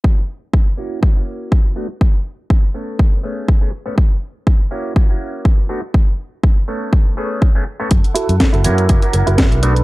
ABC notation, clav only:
X:1
M:4/4
L:1/16
Q:"Swing 16ths" 1/4=122
K:F#m
V:1 name="Clav"
[A,CEF] z4 z [^A,CEF]2 z [A,CEF]4- [A,CEF] [=A,B,DF] z | z6 [A,B,CA]4 [A,B,CG]3 [A,B,CG] z [A,B,CA] | z6 [^A,CEF]2 [A,CEF] [A,CEF]4- [A,CEF] [=A,B,DF] z | z6 [A,B,CA]4 [A,B,CG]3 [A,B,CG] z [A,B,CA] |
z6 [^A,CEF]2 [A,CEF] [A,CEF]4- [A,CEF] [=A,B,DF] z |]